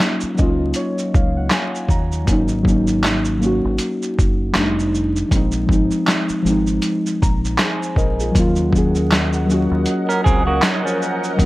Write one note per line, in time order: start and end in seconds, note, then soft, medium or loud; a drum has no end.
0.00 0.35 F#3 medium
0.00 0.37 A#3 medium
0.00 0.40 C#4 medium
0.00 0.14 D#4 medium
0.00 0.42 F4 medium
0.00 snare loud
0.00 closed hi-hat medium
0.00 shaker medium
0.21 muted fingered electric bass stroke soft
0.21 shaker soft
0.35 1.35 F#3 medium
0.35 1.37 A#3 medium
0.35 0.73 D#5 medium
0.35 shaker soft
0.39 0.72 C#2 medium
0.39 1.38 C#4 medium
0.39 1.39 F4 medium
0.39 kick medium
0.74 1.11 C#5 medium
0.74 closed hi-hat medium
0.74 shaker medium
0.98 shaker soft
1.14 1.47 C#2 medium
1.14 1.35 F5 medium
1.14 kick loud
1.14 shaker soft
1.37 1.51 F#5 medium
1.50 1.87 G#5 medium
1.50 snare loud
1.50 clap medium
1.50 closed hi-hat medium
1.50 shaker medium
1.75 shaker soft
1.89 2.29 D#2 medium
1.89 2.25 A#5 medium
1.89 kick medium
1.89 shaker soft
2.12 shaker soft
2.25 3.60 G#1 loud
2.25 2.52 F#3 medium
2.25 2.54 A#3 medium
2.25 kick medium
2.25 closed hi-hat medium
2.25 shaker medium
2.29 2.55 C#4 medium
2.29 2.56 D#4 medium
2.48 shaker medium
2.63 3.14 F#3 medium
2.63 3.15 A#3 medium
2.63 kick medium
2.68 3.16 C#4 medium
2.68 3.17 D#4 medium
2.68 shaker medium
2.87 shaker soft
3.04 snare medium
3.04 clap medium
3.04 closed hi-hat medium
3.04 shaker medium
3.25 shaker soft
3.38 4.39 F#3 medium
3.38 4.40 A#3 medium
3.38 shaker medium
3.43 4.42 C#4 medium
3.43 4.43 F#4 medium
3.65 3.78 G#1 medium
3.78 closed hi-hat medium
3.78 shaker medium
4.03 shaker soft
4.19 4.51 F#1 medium
4.19 kick loud
4.19 shaker soft
4.53 5.22 F1 loud
4.53 5.17 G3 medium
4.53 5.18 A3 medium
4.53 snare loud
4.53 clap medium
4.53 closed hi-hat medium
4.53 shaker medium
4.58 5.20 D4 medium
4.58 5.21 D#4 medium
4.79 shaker soft
4.95 shaker soft
5.16 shaker soft
5.28 5.65 A#1 loud
5.28 5.56 F3 medium
5.28 5.57 G#3 medium
5.28 kick loud
5.28 closed hi-hat medium
5.28 shaker medium
5.33 5.59 C4 medium
5.33 5.60 D#4 medium
5.52 shaker medium
5.66 5.89 G#1 medium
5.66 6.17 F3 medium
5.66 6.19 G#3 medium
5.66 kick medium
5.71 6.20 C4 medium
5.71 6.21 D#4 medium
5.71 shaker medium
5.91 shaker soft
6.07 snare medium
6.07 clap medium
6.07 closed hi-hat medium
6.07 shaker medium
6.29 muted fingered electric bass stroke soft
6.29 shaker soft
6.42 6.78 G#1 medium
6.42 7.43 F3 medium
6.42 7.44 G#3 medium
6.42 shaker soft
6.47 7.46 C4 medium
6.47 7.47 D#4 medium
6.67 shaker soft
6.82 closed hi-hat medium
6.82 shaker medium
7.06 shaker soft
7.22 7.55 A#1 medium
7.22 7.57 A#5 medium
7.22 kick loud
7.22 shaker soft
7.45 shaker soft
7.58 7.96 G#4 medium
7.58 7.95 C5 medium
7.58 7.94 G#5 medium
7.58 snare loud
7.58 clap medium
7.58 closed hi-hat medium
7.58 shaker medium
7.83 shaker soft
7.96 8.30 A#1 medium
7.96 8.19 A#4 medium
7.96 8.32 D#5 medium
7.96 kick medium
7.96 shaker soft
8.20 8.38 F4 soft
8.20 8.56 G#4 soft
8.20 shaker soft
8.32 9.67 D#2 loud
8.32 8.60 F#3 medium
8.32 8.61 A#3 medium
8.32 11.46 C#4 medium
8.32 11.46 A#4 medium
8.32 11.46 D#5 medium
8.32 11.46 F#5 medium
8.32 kick loud
8.32 closed hi-hat medium
8.32 shaker medium
8.37 8.62 C#4 medium
8.37 8.64 F4 medium
8.56 shaker medium
8.70 9.21 F#3 medium
8.70 9.23 A#3 medium
8.70 kick medium
8.75 9.24 C#4 medium
8.75 9.25 G#4 medium
8.75 shaker soft
8.95 shaker soft
9.11 snare loud
9.11 clap medium
9.11 closed hi-hat medium
9.11 shaker medium
9.33 shaker soft
9.46 10.47 F#3 medium
9.46 10.48 A#3 medium
9.46 shaker soft
9.51 10.49 C#4 medium
9.51 10.51 F#4 medium
9.71 9.85 D#2 medium
9.86 closed hi-hat medium
9.86 shaker medium
10.09 10.24 C#4 medium
10.09 10.24 A#4 medium
10.09 shaker soft
10.24 10.59 C#2 medium
10.24 10.46 C4 medium
10.24 10.46 G#4 medium
10.24 kick loud
10.24 shaker soft
10.47 10.62 A#3 medium
10.47 10.62 F#4 medium
10.62 10.84 F#3 medium
10.62 10.84 D#4 medium
10.62 snare loud
10.62 clap medium
10.62 closed hi-hat medium
10.62 shaker medium
10.85 11.46 F3 medium
10.85 11.46 C#4 medium
10.85 shaker soft
11.02 shaker soft
11.24 shaker soft
11.36 11.46 D#2 loud
11.36 11.46 F#3 medium
11.36 11.46 A#3 medium
11.36 kick medium
11.36 closed hi-hat medium
11.36 shaker medium
11.41 11.46 C#4 medium